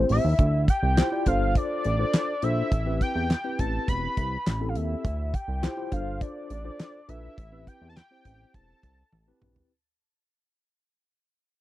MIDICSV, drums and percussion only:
0, 0, Header, 1, 2, 480
1, 0, Start_track
1, 0, Key_signature, 0, "minor"
1, 0, Tempo, 582524
1, 319, Time_signature, 4, 2, 24, 8
1, 9561, End_track
2, 0, Start_track
2, 0, Title_t, "Drums"
2, 76, Note_on_c, 9, 46, 88
2, 159, Note_off_c, 9, 46, 0
2, 320, Note_on_c, 9, 36, 127
2, 320, Note_on_c, 9, 42, 85
2, 402, Note_off_c, 9, 42, 0
2, 403, Note_off_c, 9, 36, 0
2, 562, Note_on_c, 9, 36, 97
2, 565, Note_on_c, 9, 42, 62
2, 644, Note_off_c, 9, 36, 0
2, 647, Note_off_c, 9, 42, 0
2, 803, Note_on_c, 9, 42, 94
2, 807, Note_on_c, 9, 38, 113
2, 812, Note_on_c, 9, 39, 91
2, 885, Note_off_c, 9, 42, 0
2, 889, Note_off_c, 9, 38, 0
2, 895, Note_off_c, 9, 39, 0
2, 1038, Note_on_c, 9, 42, 77
2, 1042, Note_on_c, 9, 36, 85
2, 1121, Note_off_c, 9, 42, 0
2, 1124, Note_off_c, 9, 36, 0
2, 1281, Note_on_c, 9, 36, 123
2, 1281, Note_on_c, 9, 42, 77
2, 1363, Note_off_c, 9, 36, 0
2, 1364, Note_off_c, 9, 42, 0
2, 1520, Note_on_c, 9, 42, 68
2, 1603, Note_off_c, 9, 42, 0
2, 1759, Note_on_c, 9, 42, 97
2, 1763, Note_on_c, 9, 38, 111
2, 1768, Note_on_c, 9, 39, 88
2, 1841, Note_off_c, 9, 42, 0
2, 1845, Note_off_c, 9, 38, 0
2, 1851, Note_off_c, 9, 39, 0
2, 1997, Note_on_c, 9, 42, 79
2, 2079, Note_off_c, 9, 42, 0
2, 2239, Note_on_c, 9, 36, 126
2, 2239, Note_on_c, 9, 42, 83
2, 2322, Note_off_c, 9, 36, 0
2, 2322, Note_off_c, 9, 42, 0
2, 2480, Note_on_c, 9, 36, 97
2, 2482, Note_on_c, 9, 42, 61
2, 2562, Note_off_c, 9, 36, 0
2, 2564, Note_off_c, 9, 42, 0
2, 2719, Note_on_c, 9, 42, 91
2, 2723, Note_on_c, 9, 38, 117
2, 2729, Note_on_c, 9, 39, 90
2, 2802, Note_off_c, 9, 42, 0
2, 2806, Note_off_c, 9, 38, 0
2, 2811, Note_off_c, 9, 39, 0
2, 2958, Note_on_c, 9, 42, 78
2, 2960, Note_on_c, 9, 36, 89
2, 3041, Note_off_c, 9, 42, 0
2, 3042, Note_off_c, 9, 36, 0
2, 3199, Note_on_c, 9, 36, 122
2, 3200, Note_on_c, 9, 42, 81
2, 3281, Note_off_c, 9, 36, 0
2, 3282, Note_off_c, 9, 42, 0
2, 3437, Note_on_c, 9, 42, 68
2, 3438, Note_on_c, 9, 36, 105
2, 3520, Note_off_c, 9, 42, 0
2, 3521, Note_off_c, 9, 36, 0
2, 3678, Note_on_c, 9, 42, 101
2, 3682, Note_on_c, 9, 38, 106
2, 3687, Note_on_c, 9, 39, 92
2, 3761, Note_off_c, 9, 42, 0
2, 3764, Note_off_c, 9, 38, 0
2, 3770, Note_off_c, 9, 39, 0
2, 3918, Note_on_c, 9, 42, 76
2, 4000, Note_off_c, 9, 42, 0
2, 4158, Note_on_c, 9, 36, 120
2, 4159, Note_on_c, 9, 42, 82
2, 4241, Note_off_c, 9, 36, 0
2, 4241, Note_off_c, 9, 42, 0
2, 4399, Note_on_c, 9, 36, 96
2, 4403, Note_on_c, 9, 42, 57
2, 4482, Note_off_c, 9, 36, 0
2, 4486, Note_off_c, 9, 42, 0
2, 4640, Note_on_c, 9, 42, 88
2, 4644, Note_on_c, 9, 38, 115
2, 4650, Note_on_c, 9, 39, 88
2, 4723, Note_off_c, 9, 42, 0
2, 4726, Note_off_c, 9, 38, 0
2, 4732, Note_off_c, 9, 39, 0
2, 4877, Note_on_c, 9, 42, 79
2, 4879, Note_on_c, 9, 36, 86
2, 4959, Note_off_c, 9, 42, 0
2, 4961, Note_off_c, 9, 36, 0
2, 5119, Note_on_c, 9, 36, 126
2, 5122, Note_on_c, 9, 42, 72
2, 5201, Note_off_c, 9, 36, 0
2, 5204, Note_off_c, 9, 42, 0
2, 5358, Note_on_c, 9, 42, 65
2, 5441, Note_off_c, 9, 42, 0
2, 5599, Note_on_c, 9, 42, 105
2, 5603, Note_on_c, 9, 38, 112
2, 5608, Note_on_c, 9, 39, 89
2, 5682, Note_off_c, 9, 42, 0
2, 5685, Note_off_c, 9, 38, 0
2, 5691, Note_off_c, 9, 39, 0
2, 5841, Note_on_c, 9, 42, 76
2, 5924, Note_off_c, 9, 42, 0
2, 6080, Note_on_c, 9, 36, 127
2, 6082, Note_on_c, 9, 42, 85
2, 6163, Note_off_c, 9, 36, 0
2, 6164, Note_off_c, 9, 42, 0
2, 6321, Note_on_c, 9, 36, 100
2, 6326, Note_on_c, 9, 42, 65
2, 6404, Note_off_c, 9, 36, 0
2, 6408, Note_off_c, 9, 42, 0
2, 6563, Note_on_c, 9, 42, 88
2, 6567, Note_on_c, 9, 38, 115
2, 6573, Note_on_c, 9, 39, 86
2, 6646, Note_off_c, 9, 42, 0
2, 6649, Note_off_c, 9, 38, 0
2, 6655, Note_off_c, 9, 39, 0
2, 6799, Note_on_c, 9, 42, 78
2, 6801, Note_on_c, 9, 36, 80
2, 6881, Note_off_c, 9, 42, 0
2, 6883, Note_off_c, 9, 36, 0
2, 7039, Note_on_c, 9, 36, 127
2, 7041, Note_on_c, 9, 42, 77
2, 7122, Note_off_c, 9, 36, 0
2, 7123, Note_off_c, 9, 42, 0
2, 7277, Note_on_c, 9, 42, 67
2, 7279, Note_on_c, 9, 36, 94
2, 7360, Note_off_c, 9, 42, 0
2, 7361, Note_off_c, 9, 36, 0
2, 7519, Note_on_c, 9, 48, 64
2, 7601, Note_off_c, 9, 48, 0
2, 7759, Note_on_c, 9, 45, 101
2, 7842, Note_off_c, 9, 45, 0
2, 7878, Note_on_c, 9, 43, 93
2, 7960, Note_off_c, 9, 43, 0
2, 9561, End_track
0, 0, End_of_file